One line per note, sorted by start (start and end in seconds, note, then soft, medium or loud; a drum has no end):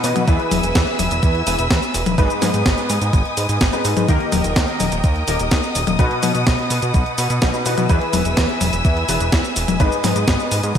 0.00 0.14 B2 medium
0.00 0.25 E3 medium
0.00 0.25 B3 medium
0.00 0.25 D#4 medium
0.00 0.25 F#4 medium
0.00 4.05 B4 medium
0.00 0.25 B4 medium
0.00 0.24 D#5 medium
0.00 0.26 F#5 medium
0.00 0.24 D#6 medium
0.00 open hi-hat loud
0.00 cabasa medium
0.16 0.26 B2 loud
0.16 closed hi-hat medium
0.16 high tom medium
0.16 cabasa soft
0.27 0.38 E2 loud
0.27 1.44 E3 loud
0.27 1.44 B3 medium
0.27 1.44 E4 medium
0.27 1.44 G#4 medium
0.27 1.44 B4 loud
0.27 2.16 E5 medium
0.27 2.16 G#5 medium
0.27 2.16 E6 medium
0.27 kick loud
0.27 closed hi-hat medium
0.27 cabasa soft
0.40 closed hi-hat soft
0.51 0.61 E1 loud
0.51 open hi-hat loud
0.51 high tom medium
0.51 cabasa medium
0.63 0.73 E1 medium
0.63 closed hi-hat medium
0.63 cabasa soft
0.75 0.85 E2 medium
0.75 kick loud
0.75 snare loud
0.75 closed hi-hat medium
0.75 cabasa soft
0.87 closed hi-hat soft
0.99 1.09 E1 medium
0.99 open hi-hat loud
0.99 high tom medium
0.99 cabasa medium
1.11 1.21 E1 loud
1.11 closed hi-hat medium
1.11 cabasa soft
1.23 1.43 E2 medium
1.23 kick loud
1.23 closed hi-hat medium
1.23 cabasa soft
1.35 closed hi-hat soft
1.47 1.57 E1 medium
1.47 1.60 E3 medium
1.47 1.60 B3 medium
1.47 1.60 E4 medium
1.47 1.60 G#4 medium
1.47 1.60 B4 medium
1.47 open hi-hat loud
1.47 cabasa medium
1.59 1.68 E1 medium
1.59 closed hi-hat medium
1.59 cabasa soft
1.71 1.80 E2 loud
1.71 kick loud
1.71 snare loud
1.71 closed hi-hat medium
1.71 cabasa soft
1.82 closed hi-hat soft
1.82 cabasa soft
1.94 2.04 E1 loud
1.94 open hi-hat loud
1.94 cabasa medium
2.06 2.16 E1 medium
2.06 closed hi-hat medium
2.06 high tom medium
2.06 cabasa soft
2.18 2.28 G#1 loud
2.18 3.58 G#2 loud
2.18 3.58 B3 medium
2.18 3.58 D#4 medium
2.18 3.58 G#4 medium
2.18 3.58 B4 loud
2.18 7.86 D#5 medium
2.18 4.07 G#5 medium
2.18 4.07 D#6 medium
2.18 kick loud
2.18 closed hi-hat medium
2.18 cabasa soft
2.30 closed hi-hat soft
2.30 cabasa soft
2.42 2.52 G#2 loud
2.42 snare medium
2.42 open hi-hat loud
2.42 high tom medium
2.42 cabasa medium
2.54 2.64 G#2 medium
2.54 closed hi-hat medium
2.54 cabasa soft
2.66 2.76 G#1 medium
2.66 kick loud
2.66 snare loud
2.66 closed hi-hat medium
2.66 cabasa soft
2.78 closed hi-hat soft
2.78 cabasa soft
2.90 2.99 G#2 medium
2.90 open hi-hat loud
2.90 cabasa medium
3.01 3.11 G#2 medium
3.01 closed hi-hat medium
3.01 cabasa soft
3.13 3.23 G#1 loud
3.13 kick loud
3.13 closed hi-hat medium
3.13 cabasa soft
3.25 closed hi-hat soft
3.37 3.47 G#2 medium
3.37 open hi-hat loud
3.37 cabasa medium
3.49 3.59 G#2 loud
3.49 closed hi-hat medium
3.49 cabasa soft
3.61 3.71 G#1 loud
3.61 kick loud
3.61 snare loud
3.61 closed hi-hat medium
3.61 cabasa soft
3.73 4.06 G#2 medium
3.73 4.06 B3 medium
3.73 4.06 D#4 medium
3.73 4.06 G#4 medium
3.73 4.06 B4 loud
3.73 closed hi-hat soft
3.73 cabasa soft
3.85 3.95 G#2 loud
3.85 open hi-hat loud
3.85 cabasa medium
3.97 4.07 G#2 loud
3.97 closed hi-hat medium
3.97 high tom medium
3.97 cabasa soft
4.09 4.18 D#2 loud
4.09 5.25 D#3 medium
4.09 5.25 A#3 medium
4.09 5.25 D#4 medium
4.09 5.25 G4 medium
4.09 5.97 A#4 medium
4.09 5.25 A#4 loud
4.09 5.97 G5 medium
4.09 7.86 D#6 medium
4.09 kick loud
4.09 closed hi-hat medium
4.09 cabasa soft
4.20 closed hi-hat soft
4.32 4.42 D#1 loud
4.32 open hi-hat loud
4.32 high tom medium
4.32 cabasa medium
4.44 4.54 D#1 medium
4.44 closed hi-hat medium
4.44 cabasa soft
4.56 4.66 D#2 medium
4.56 kick loud
4.56 snare loud
4.56 closed hi-hat medium
4.56 cabasa soft
4.68 closed hi-hat soft
4.80 4.90 D#1 medium
4.80 open hi-hat loud
4.80 high tom medium
4.80 cabasa medium
4.92 5.02 D#1 medium
4.92 closed hi-hat medium
4.92 cabasa soft
5.04 5.24 D#2 medium
5.04 kick loud
5.04 closed hi-hat medium
5.04 cabasa soft
5.16 closed hi-hat soft
5.28 5.38 D#1 medium
5.28 5.41 D#3 medium
5.28 5.41 A#3 medium
5.28 5.41 D#4 medium
5.28 5.41 G4 medium
5.28 5.41 A#4 medium
5.28 open hi-hat loud
5.28 cabasa medium
5.40 5.49 D#1 loud
5.40 closed hi-hat medium
5.40 cabasa soft
5.51 5.61 D#2 loud
5.51 kick loud
5.51 snare loud
5.51 closed hi-hat medium
5.51 cabasa soft
5.63 closed hi-hat soft
5.63 cabasa soft
5.75 5.85 D#1 medium
5.75 open hi-hat loud
5.75 cabasa medium
5.87 5.97 D#1 loud
5.87 closed hi-hat medium
5.87 high tom medium
5.87 cabasa soft
5.99 6.09 B1 loud
5.99 7.39 B2 loud
5.99 7.39 B3 medium
5.99 7.39 D#4 medium
5.99 7.39 F#4 medium
5.99 7.39 B4 loud
5.99 10.71 B4 medium
5.99 7.88 F#5 medium
5.99 kick loud
5.99 closed hi-hat medium
5.99 cabasa soft
6.11 closed hi-hat soft
6.23 6.33 B2 loud
6.23 open hi-hat loud
6.23 high tom medium
6.23 cabasa medium
6.35 6.45 B2 medium
6.35 closed hi-hat medium
6.35 cabasa soft
6.47 6.57 B1 medium
6.47 kick loud
6.47 snare loud
6.47 closed hi-hat medium
6.47 cabasa soft
6.59 closed hi-hat soft
6.70 6.80 B2 medium
6.70 open hi-hat loud
6.70 cabasa medium
6.82 6.92 B2 loud
6.82 closed hi-hat medium
6.82 cabasa soft
6.94 7.04 B1 medium
6.94 kick loud
6.94 closed hi-hat medium
6.94 cabasa soft
7.06 closed hi-hat soft
7.18 7.28 B2 loud
7.18 open hi-hat loud
7.18 cabasa medium
7.30 7.40 B2 loud
7.30 closed hi-hat medium
7.30 cabasa soft
7.42 7.52 B1 medium
7.42 7.63 B2 medium
7.42 7.63 B3 medium
7.42 7.63 D#4 medium
7.42 7.63 F#4 medium
7.42 7.63 B4 medium
7.42 kick loud
7.42 snare loud
7.42 closed hi-hat medium
7.42 cabasa soft
7.54 closed hi-hat soft
7.54 cabasa soft
7.66 7.76 B2 medium
7.66 7.87 E3 medium
7.66 7.87 B3 medium
7.66 7.87 D#4 medium
7.66 7.87 F#4 medium
7.66 7.87 B4 medium
7.66 open hi-hat loud
7.66 cabasa medium
7.78 7.88 B2 loud
7.78 closed hi-hat medium
7.78 high tom medium
7.78 cabasa soft
7.89 7.99 E2 loud
7.89 9.06 E3 loud
7.89 9.06 B3 medium
7.89 9.06 E4 medium
7.89 9.06 G#4 medium
7.89 9.06 B4 loud
7.89 9.78 E5 medium
7.89 10.72 G#5 medium
7.89 9.78 E6 medium
7.89 kick loud
7.89 closed hi-hat medium
7.89 cabasa soft
8.01 closed hi-hat soft
8.13 8.23 E1 loud
8.13 open hi-hat loud
8.13 high tom medium
8.13 cabasa medium
8.25 8.35 E1 medium
8.25 closed hi-hat medium
8.25 cabasa soft
8.37 8.47 E2 medium
8.37 kick loud
8.37 snare loud
8.37 closed hi-hat medium
8.37 cabasa soft
8.49 closed hi-hat soft
8.61 8.71 E1 medium
8.61 open hi-hat loud
8.61 high tom medium
8.61 cabasa medium
8.73 8.83 E1 loud
8.73 closed hi-hat medium
8.73 cabasa soft
8.85 9.05 E2 medium
8.85 kick loud
8.85 closed hi-hat medium
8.85 cabasa soft
8.97 closed hi-hat soft
9.09 9.18 E1 medium
9.09 9.21 E3 medium
9.09 9.21 B3 medium
9.09 9.21 E4 medium
9.09 9.21 G#4 medium
9.09 9.21 B4 medium
9.09 open hi-hat loud
9.09 cabasa medium
9.20 9.30 E1 medium
9.20 closed hi-hat medium
9.20 cabasa soft
9.32 9.42 E2 loud
9.32 kick loud
9.32 snare loud
9.32 closed hi-hat medium
9.32 cabasa soft
9.44 closed hi-hat soft
9.44 cabasa soft
9.56 9.66 E1 medium
9.56 open hi-hat loud
9.56 cabasa medium
9.68 9.78 E1 loud
9.68 closed hi-hat medium
9.68 high tom medium
9.68 cabasa soft
9.80 9.90 G#1 loud
9.80 10.74 G#2 loud
9.80 10.74 B3 medium
9.80 10.74 D#4 loud
9.80 10.74 G#4 medium
9.80 10.74 B4 loud
9.80 10.74 D#5 medium
9.80 10.74 D#6 medium
9.80 kick loud
9.80 closed hi-hat medium
9.80 cabasa soft
9.92 closed hi-hat soft
9.92 cabasa soft
10.04 10.14 G#2 loud
10.04 snare medium
10.04 open hi-hat loud
10.04 high tom medium
10.04 cabasa medium
10.16 10.26 G#2 medium
10.16 closed hi-hat medium
10.16 cabasa soft
10.28 10.38 G#1 medium
10.28 kick loud
10.28 snare loud
10.28 closed hi-hat medium
10.28 cabasa soft
10.40 closed hi-hat soft
10.40 cabasa soft
10.51 10.61 G#2 medium
10.51 open hi-hat loud
10.51 cabasa medium
10.63 10.73 G#2 loud
10.63 closed hi-hat medium
10.63 cabasa soft